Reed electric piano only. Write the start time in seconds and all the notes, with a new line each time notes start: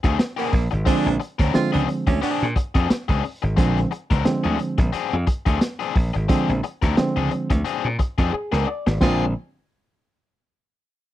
0.86 D3 F3 G#3 C4
1.54 D3 F3 G#3 C4
3.57 D3 F3 G#3 C4
4.25 D3 F3 G#3 C4
6.29 D3 F3 G#3 C4
6.97 D3 F3 G#3 C4
8.33 G#4
8.52 A#4
8.67 D5
9.01 D3 F3 G#3 C4